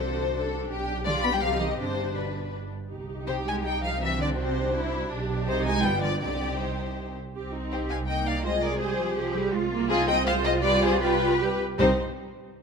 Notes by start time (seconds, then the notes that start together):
Already playing: C2 C3 D4 F#4 C5
0.00 A4
0.34 A4
0.70 B1 G4
1.05 D3 F4 D5
1.24 B3 B5
1.33 G3 G5
1.42 C2 F3 C4 D#4 F5
1.60 D#3 D#5
1.79 G1 C3 D4 C5
2.16 B2 B4
2.91 C2 D#4 G4
3.27 C3 G4 C5
3.46 G#3 G#5
3.65 G3 D#4 G5
3.83 F3 F5
4.01 E3 C4 D4 F#4 E5
4.20 D3 D5
4.38 C3 C5
4.75 E4
5.11 B1 D4 G4
5.48 C2 C3 D#4 C5
5.65 G#3 G#5
5.84 G1 G3 B3 F4 G5
6.02 D3 D5
6.21 C2 D3 C4 D#4 G4 D5
6.59 C3 C5
7.35 C2 C4 G4
7.55 D#4
7.72 G4 C5
7.89 F5 G#5
8.08 A#3 D#4 D#5 G5
8.27 D5 F5
8.45 G#3 F4 G#4 C5 D#5
8.63 A#4 D5
8.79 G3 G4 G#4 C5
9.00 F3
9.17 F3 G4 G#4
9.36 G3
9.54 C2 G#3 F4
9.73 A#3
9.89 C4 D#4 F4 G#4
10.08 D#5 G5
10.26 G#3 F4 C5 F5
10.44 C5 D#5
10.63 G3 G4 B4 D5
10.83 G#4 C5
11.01 G3 F4 G4 B4
11.22 F4
11.40 G3 G4
11.78 C2 G3 C4 D#4 C5